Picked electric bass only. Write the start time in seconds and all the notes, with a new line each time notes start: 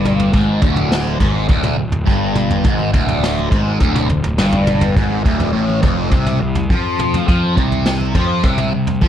Already playing: G1
0.33 G#1
0.62 D1
1.21 G#1
1.49 D1
1.77 D1
2.07 G1
2.65 G#1
2.94 D1
3.52 G#1
3.80 D1
4.10 D1
4.39 G1
4.97 G#1
5.25 D1
5.54 A1
5.83 F1
6.12 C2
6.42 C2
6.70 F2
7.29 F2
7.57 C2
8.15 F2
8.44 C2
8.73 C2
9.01 F2